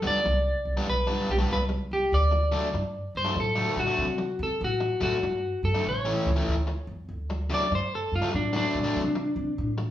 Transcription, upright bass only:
0.04 0.18 D2 medium
0.25 0.52 C2 medium
0.65 0.80 C2 medium
0.88 1.14 B1 medium
1.29 1.43 B1 medium
1.51 1.77 C2 medium
1.91 2.05 C2 medium
2.12 2.53 D2 loud
2.74 3.00 G2 medium
3.15 3.29 G2 medium
3.36 3.63 A2 medium
3.76 3.91 A2 medium
3.98 4.25 C3 medium
4.39 4.53 C3 medium
4.61 4.87 A2 loud
5.01 5.16 A2 medium
5.22 5.49 G2 medium
5.63 5.77 G2 medium
5.85 6.11 A1 medium
6.25 6.40 C#2 medium
6.47 6.74 D2 medium
6.87 7.02 E2 medium
7.09 7.49 D2 medium
7.71 7.98 G2 medium
8.12 8.26 G2 medium
8.34 8.60 A2 medium
8.74 8.88 A2 medium
8.96 9.22 C3 medium
9.36 9.50 C3 loud
9.58 9.84 A2 medium

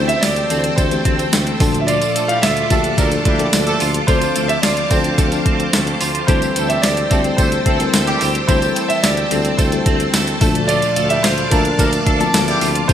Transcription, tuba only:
0.00 0.15 D2 loud
0.23 0.43 D2 medium
0.50 0.70 D2 loud
0.78 0.98 D2 loud
1.05 1.25 D2 loud
1.33 1.53 D2 loud
1.60 2.00 D2 loud
2.43 2.63 D2 loud
2.71 2.91 D2 medium
2.98 3.18 D2 loud
3.25 3.45 D2 loud
3.53 3.73 D2 loud
3.81 4.00 D2 loud
4.08 4.28 D2 loud
4.36 4.55 D2 medium
4.63 4.83 D2 loud
4.91 5.11 D2 loud
5.18 5.38 D2 loud
5.46 5.66 D2 medium
5.73 5.93 D2 loud
6.01 6.21 D2 medium
6.28 6.48 D2 loud
6.56 6.76 D2 loud
6.84 7.03 D2 loud
7.11 7.31 D2 loud
7.38 7.58 D2 loud
7.66 7.86 D2 loud
7.94 8.13 D2 loud
8.21 8.41 D2 loud
8.49 8.68 D2 loud
9.04 9.24 D2 loud
9.31 9.51 D2 loud
9.59 9.78 D2 loud
9.86 10.06 D2 loud
10.14 10.34 D2 loud
10.41 10.81 D2 loud
10.96 11.16 D2 medium
11.24 11.44 D2 loud
11.52 11.71 D2 medium
11.79 11.99 D2 loud
12.07 12.26 D2 loud
12.34 12.54 D2 loud
12.62 12.81 D2 loud
12.89 12.93 D2 loud

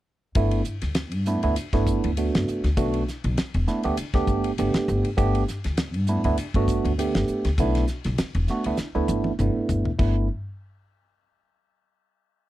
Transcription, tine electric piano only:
0.35 0.61 A3 loud
0.35 0.61 B3 medium
0.35 0.61 D4 medium
0.35 0.62 E4 loud
1.27 1.40 A3 medium
1.27 1.40 B3 medium
1.27 1.40 D4 medium
1.27 1.41 E4 medium
1.43 1.54 A3 medium
1.43 1.54 B3 medium
1.43 1.55 D4 medium
1.43 1.54 E4 medium
1.58 1.65 D4 soft
1.58 1.65 F#4 soft
1.73 2.10 A3 loud
1.73 2.10 B3 medium
1.73 2.10 D4 medium
1.73 2.10 E4 loud
2.18 2.68 A3 medium
2.18 2.68 B3 medium
2.18 2.68 D4 medium
2.18 2.68 F#4 medium
2.77 3.02 A3 loud
2.77 3.03 B3 medium
2.77 3.02 D4 loud
2.77 3.03 F#4 loud
3.68 3.81 A3 medium
3.68 3.81 B3 medium
3.68 3.81 D4 medium
3.68 3.81 E4 medium
3.84 3.95 A3 medium
3.84 3.95 B3 medium
3.84 3.96 D4 medium
3.84 3.96 G4 loud
3.98 4.06 D4 soft
3.98 4.06 E4 soft
4.14 4.51 A3 loud
4.14 4.50 B3 medium
4.14 4.51 D4 medium
4.14 4.51 G4 loud
4.59 5.09 A3 medium
4.59 5.09 B3 medium
4.59 5.09 D4 medium
4.59 5.09 G4 medium
5.17 5.43 A3 loud
5.17 5.43 B3 loud
5.17 5.43 D4 medium
5.17 5.43 G4 loud
5.50 5.57 D4 soft
5.50 5.57 G4 soft
6.09 6.22 A3 medium
6.09 6.22 B3 medium
6.09 6.22 D4 medium
6.09 6.22 E4 medium
6.25 6.36 A3 medium
6.25 6.36 B3 medium
6.25 6.36 D4 medium
6.25 6.36 E4 medium
6.38 6.46 D4 soft
6.38 6.46 G4 soft
6.56 6.92 A3 loud
6.56 6.91 B3 medium
6.56 6.92 D4 medium
6.56 6.92 F#4 loud
6.98 7.49 A3 medium
6.98 7.49 B3 medium
6.98 7.49 D4 medium
6.98 7.49 G4 medium
7.59 7.84 A3 loud
7.59 7.84 B3 medium
7.59 7.84 D4 medium
7.59 7.84 E4 loud
8.49 8.63 A3 medium
8.49 8.63 B3 medium
8.49 8.63 D4 medium
8.49 8.63 F#4 medium
8.66 8.77 A3 medium
8.66 8.77 B3 medium
8.66 8.77 D4 medium
8.66 8.77 E4 medium
8.80 8.87 D4 soft
8.80 8.88 E4 soft
8.95 9.32 A3 loud
8.95 9.32 B3 medium
8.95 9.31 D4 medium
8.95 9.31 E4 loud
9.40 9.90 A3 medium
9.40 9.90 B3 medium
9.40 9.90 D4 medium
9.40 9.90 E4 medium
9.99 10.27 A3 medium
9.99 10.27 B3 medium
9.99 10.27 D4 medium
9.99 10.27 E4 medium

